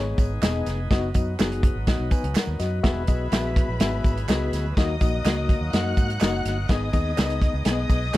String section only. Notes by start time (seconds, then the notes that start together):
2.83 B4 B5
4.76 D#5 D#6
5.73 F#5 F#6
6.69 D#5 D#6
7.66 D#5 D#6